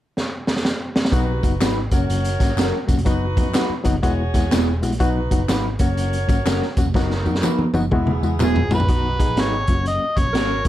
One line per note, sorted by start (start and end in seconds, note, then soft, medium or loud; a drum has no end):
0.17 snare soft
0.47 snare medium
0.56 snare medium
0.65 snare medium
0.96 snare medium
1.05 snare medium
1.12 1.39 B1 loud
1.12 1.31 F#3 loud
1.12 1.31 B3 medium
1.12 1.60 D#4 medium
1.12 1.31 D#4 medium
1.12 1.60 F#4 medium
1.12 1.31 F#4 loud
1.12 1.60 B4 medium
1.12 kick loud
1.12 closed hi-hat medium
1.12 tambourine soft
1.12 muted conga soft
1.43 1.59 F#1 medium
1.43 1.54 F#3 medium
1.43 1.54 B3 medium
1.43 1.54 D#4 medium
1.43 1.54 F#4 medium
1.43 kick medium
1.43 closed hi-hat medium
1.43 tambourine soft
1.43 muted conga soft
1.60 1.88 G#1 medium
1.60 1.79 F#3 medium
1.60 1.79 B3 medium
1.60 1.76 D#4 medium
1.60 1.79 D#4 medium
1.60 1.77 F#4 medium
1.60 1.80 F#4 medium
1.60 1.77 B4 medium
1.60 snare loud
1.60 clap medium
1.60 closed hi-hat medium
1.60 tambourine medium
1.60 high conga medium
1.91 2.07 F#1 medium
1.91 2.28 F#3 medium
1.91 2.28 A#3 medium
1.91 2.28 C#4 medium
1.91 2.87 F#4 medium
1.91 2.28 F#4 medium
1.91 2.87 A#4 medium
1.91 2.87 C#5 medium
1.91 kick medium
1.91 closed hi-hat medium
1.91 tambourine soft
2.09 2.36 F#1 medium
2.09 closed hi-hat medium
2.09 tambourine soft
2.24 closed hi-hat medium
2.40 2.55 G#1 medium
2.40 2.50 F#3 medium
2.40 2.51 A#3 medium
2.40 2.51 C#4 medium
2.40 2.51 F#4 medium
2.40 kick medium
2.40 snare soft
2.40 closed hi-hat medium
2.40 tambourine soft
2.57 2.71 F#1 medium
2.57 2.76 F#3 medium
2.57 2.77 A#3 medium
2.57 2.73 C#4 medium
2.57 2.77 C#4 medium
2.57 2.74 F#4 medium
2.57 2.77 F#4 medium
2.57 2.74 A#4 medium
2.57 snare loud
2.57 clap medium
2.57 closed hi-hat medium
2.57 tambourine medium
2.57 high conga medium
2.87 2.96 E1 medium
2.87 2.98 F#3 medium
2.87 2.98 A#3 medium
2.87 2.99 C#4 medium
2.87 2.99 F#4 medium
2.87 kick medium
2.87 closed hi-hat medium
2.87 tambourine soft
2.96 3.05 F1 medium
2.96 closed hi-hat soft
2.96 high conga medium
3.05 3.39 F#1 medium
3.05 3.24 F#3 medium
3.05 3.24 B3 medium
3.05 3.84 D#4 medium
3.05 3.25 D#4 medium
3.05 3.84 F#4 medium
3.05 3.25 F#4 loud
3.05 3.84 B4 medium
3.05 kick medium
3.05 closed hi-hat medium
3.05 tambourine soft
3.05 muted conga soft
3.36 3.52 F#2 medium
3.36 3.47 F#3 medium
3.36 3.48 B3 medium
3.36 3.48 D#4 medium
3.36 3.48 F#4 medium
3.36 kick medium
3.36 closed hi-hat medium
3.36 tambourine soft
3.36 muted conga soft
3.53 3.72 F#3 medium
3.53 3.73 B3 medium
3.53 3.70 D#4 medium
3.53 3.73 D#4 medium
3.53 3.73 F#4 medium
3.53 3.71 F#4 medium
3.53 3.71 B4 medium
3.53 snare loud
3.53 clap medium
3.53 closed hi-hat medium
3.53 tambourine medium
3.53 high conga medium
3.70 muted picked electric bass stroke soft
3.84 4.01 F#1 medium
3.84 3.95 F#3 loud
3.84 3.95 B3 medium
3.84 3.96 D#4 medium
3.84 3.96 F#4 loud
3.84 kick medium
3.84 closed hi-hat medium
3.84 tambourine medium
3.93 low conga medium
4.02 4.30 E1 medium
4.02 4.22 G#3 medium
4.02 4.22 B3 medium
4.02 4.22 E4 medium
4.02 4.81 F#4 medium
4.02 4.22 F#4 loud
4.02 4.81 G#4 medium
4.02 4.81 C#5 medium
4.02 kick medium
4.02 closed hi-hat medium
4.02 tambourine soft
4.02 muted conga soft
4.34 4.49 E2 medium
4.34 4.45 G#3 medium
4.34 4.44 B3 medium
4.34 4.45 E4 medium
4.34 4.45 F#4 medium
4.34 kick medium
4.34 snare soft
4.34 closed hi-hat medium
4.34 tambourine soft
4.51 4.83 E1 medium
4.51 4.70 G#3 medium
4.51 4.67 B3 medium
4.51 4.70 B3 medium
4.51 4.71 E4 medium
4.51 4.68 F#4 medium
4.51 4.71 F#4 medium
4.51 4.68 G#4 medium
4.51 snare loud
4.51 clap medium
4.51 closed hi-hat medium
4.51 tambourine medium
4.51 high conga medium
4.81 4.98 A#1 medium
4.81 4.93 G#3 medium
4.81 4.93 B3 medium
4.81 4.93 E4 medium
4.81 4.93 F#4 medium
4.81 closed hi-hat medium
4.81 tambourine soft
4.92 closed hi-hat soft
4.92 high conga medium
4.99 5.27 B1 loud
4.99 5.19 F#3 loud
4.99 5.19 B3 medium
4.99 5.47 D#4 medium
4.99 5.19 D#4 medium
4.99 5.47 F#4 medium
4.99 5.19 F#4 loud
4.99 5.47 B4 medium
4.99 kick loud
4.99 closed hi-hat medium
4.99 tambourine soft
4.99 muted conga soft
5.31 5.46 F#1 medium
5.31 5.42 F#3 medium
5.31 5.42 B3 medium
5.31 5.42 D#4 medium
5.31 5.42 F#4 medium
5.31 kick medium
5.31 closed hi-hat medium
5.31 tambourine soft
5.31 muted conga soft
5.48 5.76 G#1 medium
5.48 5.68 F#3 medium
5.48 5.68 B3 medium
5.48 5.64 D#4 medium
5.48 5.68 D#4 medium
5.48 5.65 F#4 medium
5.48 5.68 F#4 medium
5.48 5.65 B4 medium
5.48 snare loud
5.48 clap medium
5.48 closed hi-hat medium
5.48 tambourine medium
5.48 high conga medium
5.79 5.95 F#1 medium
5.79 6.16 F#3 medium
5.79 6.16 A#3 medium
5.79 6.16 C#4 medium
5.79 6.75 F#4 medium
5.79 6.16 F#4 medium
5.79 6.75 A#4 medium
5.79 6.75 C#5 medium
5.79 kick medium
5.79 closed hi-hat medium
5.79 tambourine medium
5.97 6.24 F#1 medium
5.97 closed hi-hat medium
5.97 tambourine soft
6.13 closed hi-hat soft
6.28 6.44 G#1 medium
6.28 6.39 F#3 medium
6.28 6.39 A#3 medium
6.28 6.39 C#4 medium
6.28 6.39 F#4 medium
6.28 kick medium
6.28 closed hi-hat medium
6.28 tambourine soft
6.45 6.60 F#1 medium
6.45 6.64 F#3 medium
6.45 6.64 A#3 medium
6.45 6.61 C#4 medium
6.45 6.64 C#4 medium
6.45 6.65 F#4 medium
6.45 6.62 F#4 medium
6.45 6.62 A#4 medium
6.45 snare loud
6.45 clap medium
6.45 closed hi-hat medium
6.45 tambourine medium
6.45 high conga medium
6.62 snare soft
6.77 6.85 E1 medium
6.77 6.88 F#3 medium
6.77 6.88 A#3 medium
6.77 6.88 C#4 medium
6.77 6.88 F#4 medium
6.77 kick medium
6.77 closed hi-hat medium
6.77 tambourine soft
6.85 6.93 F1 medium
6.85 high conga medium
6.94 7.27 F#1 loud
6.94 7.13 F#3 loud
6.94 7.14 B3 medium
6.94 7.72 D#4 medium
6.94 7.14 D#4 medium
6.94 7.73 F#4 medium
6.94 7.14 F#4 loud
6.94 7.73 A#4 medium
6.94 kick medium
6.94 snare soft
6.94 tambourine soft
6.94 muted conga soft
7.11 snare soft
7.25 7.41 F#2 medium
7.25 7.36 F#3 medium
7.25 7.36 B3 medium
7.25 7.36 D#4 medium
7.25 7.36 F#4 medium
7.25 tambourine soft
7.25 muted conga soft
7.35 snare soft
7.42 7.62 F#3 medium
7.42 7.62 B3 medium
7.42 7.58 D#4 medium
7.42 7.62 D#4 medium
7.42 7.59 F#4 medium
7.42 7.62 F#4 medium
7.42 7.59 B4 medium
7.42 clap medium
7.42 high tom medium
7.42 tambourine medium
7.42 high conga medium
7.58 muted picked electric bass stroke soft
7.58 high tom medium
7.74 7.89 F#1 medium
7.74 7.85 F#3 loud
7.74 7.85 B3 medium
7.74 7.85 D#4 medium
7.74 7.85 F#4 loud
7.74 high tom medium
7.74 tambourine medium
7.82 low conga medium
7.91 8.19 E1 medium
7.91 8.10 G#3 loud
7.91 8.10 B3 medium
7.91 8.70 B3 medium
7.91 8.10 E4 medium
7.91 8.70 E4 medium
7.91 8.11 F#4 loud
7.91 8.70 G#4 medium
7.91 kick medium
7.91 mid tom medium
8.07 mid tom medium
8.23 8.38 E2 medium
8.23 8.33 G#3 medium
8.23 8.33 B3 medium
8.23 8.34 E4 medium
8.23 8.34 F#4 medium
8.23 tambourine soft
8.39 8.71 E1 medium
8.39 8.59 G#3 medium
8.39 8.55 B3 medium
8.39 8.59 B3 medium
8.39 8.59 E4 medium
8.39 8.56 F#4 medium
8.39 8.59 F#4 medium
8.39 8.56 G#4 medium
8.39 clap medium
8.39 mid tom medium
8.39 tambourine medium
8.39 high conga medium
8.44 8.71 G#4 medium
8.56 floor tom medium
8.71 8.86 A#1 medium
8.71 8.82 G#3 medium
8.71 8.82 B3 medium
8.71 8.82 E4 medium
8.71 8.82 F#4 medium
8.71 9.42 B4 medium
8.71 floor tom loud
8.71 tambourine soft
8.80 floor tom medium
8.80 high conga medium
8.89 9.23 B1 loud
8.89 9.07 F#3 medium
8.89 9.14 B3 medium
8.89 9.07 B3 medium
8.89 9.13 D#4 medium
8.89 9.08 D#4 medium
8.89 9.14 F#4 medium
8.89 9.08 F#4 medium
8.89 kick medium
8.89 closed hi-hat medium
9.19 9.30 F#3 medium
9.19 9.30 B3 medium
9.19 9.65 B3 medium
9.19 9.65 D#4 medium
9.19 9.30 D#4 medium
9.19 9.30 F#4 medium
9.19 9.65 G#4 medium
9.19 kick medium
9.19 closed hi-hat medium
9.28 9.36 A#1 medium
9.36 9.64 G#1 medium
9.36 9.55 F#3 medium
9.36 9.56 B3 medium
9.36 9.52 D#4 medium
9.36 9.56 D#4 medium
9.36 9.53 F#4 medium
9.36 9.56 F#4 medium
9.36 9.53 B4 medium
9.36 snare loud
9.36 closed hi-hat medium
9.41 9.87 C#5 medium
9.67 9.97 F#1 loud
9.67 10.04 F#3 medium
9.67 10.05 A#3 medium
9.67 10.05 C#4 medium
9.67 9.73 F4 medium
9.67 kick medium
9.67 closed hi-hat medium
9.75 10.08 F#4 medium
9.86 10.20 D#5 medium
9.86 closed hi-hat medium
10.17 10.24 F#1 medium
10.17 10.27 F#3 medium
10.17 10.27 A#3 medium
10.17 10.28 C#4 medium
10.17 10.27 F#4 medium
10.17 10.66 C#5 medium
10.17 kick medium
10.17 closed hi-hat medium
10.25 10.33 A#1 medium
10.33 10.61 G#1 medium
10.33 10.53 F#3 medium
10.33 10.53 A#3 medium
10.33 10.50 C#4 medium
10.33 10.68 C#4 medium
10.33 10.53 C#4 medium
10.33 10.68 F#4 medium
10.33 10.53 F#4 medium
10.33 10.50 F#4 medium
10.33 10.68 A#4 loud
10.33 10.51 A#4 medium
10.33 snare loud
10.33 closed hi-hat medium
10.65 10.68 F1 medium
10.65 10.68 F#3 medium
10.65 kick medium
10.65 closed hi-hat medium